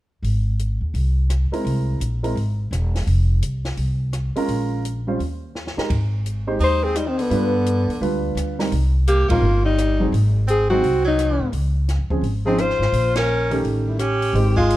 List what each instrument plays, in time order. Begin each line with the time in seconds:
0.22 upright bass G#1, open hi-hat
0.59 closed hi-hat
0.81 upright bass D#2
0.94 upright bass C2, open hi-hat
1.30 cross-stick, closed hi-hat
1.52 grand piano G#3 C4 E4 A#4, muted upright bass stroke, open hi-hat
1.65 upright bass C2, open hi-hat
2.00 upright bass A#1, closed hi-hat
2.23 grand piano G#3 C4 E4 A#4, open hi-hat
2.36 upright bass G#1, open hi-hat
2.71 upright bass E1, cross-stick, closed hi-hat
2.95 snare, open hi-hat
3.07 upright bass F1, open hi-hat
3.42 upright bass C2, closed hi-hat
3.65 snare, open hi-hat
3.77 upright bass C2, open hi-hat
4.13 cross-stick, closed hi-hat
4.36 grand piano G#3 C#4 F4 A#4, muted upright bass stroke, open hi-hat
4.48 upright bass A#1, open hi-hat
4.85 closed hi-hat
5.07 grand piano G3 C#4 F4 C5
5.19 upright bass D#2, open hi-hat
5.55 snare
5.67 snare
5.77 grand piano G#3 D#4 G4 A#4, muted upright bass stroke, snare
5.90 upright bass G#1, kick, ride
6.26 closed hi-hat
6.47 grand piano G#3 D#4 G4 C5
6.59 upright bass D#2, tenor saxophone D#4, open hi-hat
6.64 alto saxophone C5
6.83 tenor saxophone C4, alto saxophone G#4
6.95 tenor saxophone G3, alto saxophone D#4, cross-stick, closed hi-hat
7.06 tenor saxophone D#3, alto saxophone C4
7.18 tenor saxophone D3, alto saxophone B3, open hi-hat
7.30 upright bass G2, grand piano G3 D4 F4 B4, open hi-hat
7.66 closed hi-hat
7.88 upright bass F2, open hi-hat
8.01 upright bass D2, grand piano G3 D4 F4 B4, open hi-hat
8.35 upright bass D2, cross-stick, closed hi-hat
8.59 grand piano G3 C4 D#4 A#4, snare, open hi-hat
8.72 upright bass C2, open hi-hat
9.07 tenor saxophone A#3, alto saxophone G4, closed hi-hat
9.28 upright bass A#1, grand piano G3 C4 D#4 A#4, tenor saxophone A#3, alto saxophone F4, kick, ride
9.41 upright bass G1
9.64 tenor saxophone G3, alto saxophone D#4
9.78 cross-stick, closed hi-hat
10.00 grand piano F#3 C4 D#4 G#4
10.12 upright bass G#1, open hi-hat
10.47 tenor saxophone C4, alto saxophone G#4, closed hi-hat
10.69 grand piano F#3 C4 D#4 G#4, tenor saxophone C4, alto saxophone F#4
10.83 upright bass C2, open hi-hat
11.05 tenor saxophone F#3, alto saxophone D#4
11.19 cross-stick, closed hi-hat
11.40 upright bass G#2
11.52 upright bass C#2, open hi-hat
11.89 snare, closed hi-hat
11.99 upright bass F2
12.10 upright bass D2, grand piano F3 C4 C#4 G#4, kick
12.21 upright bass G#1, open hi-hat
12.46 grand piano F3 C4 C#4 D#4, tenor saxophone C4, alto saxophone G#4
12.58 tenor saxophone F4, alto saxophone C5, cross-stick, closed hi-hat
12.70 snare
12.79 upright bass G#1, snare
12.92 upright bass A#1, open hi-hat
13.15 tenor saxophone C#4, alto saxophone A#4, snare, ride
13.51 grand piano D#3 A3 C#4 G4, open hi-hat
13.63 upright bass A1, open hi-hat
13.87 tenor saxophone G3, alto saxophone E4
13.99 tenor saxophone C#4, alto saxophone G4, cross-stick, closed hi-hat
14.22 open hi-hat
14.33 upright bass G#1, grand piano D#3 G#3 C4 G4, open hi-hat
14.56 tenor saxophone G#3, alto saxophone F4, kick
14.70 closed hi-hat